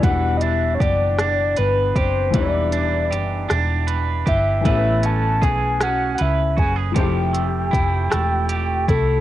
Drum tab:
HH |xxxxxx|xxxxxx|xxxxxx|xxxxxx|
SD |---r--|---r--|---r--|---r--|
BD |o-o--o|o----o|o-o--o|o-o--o|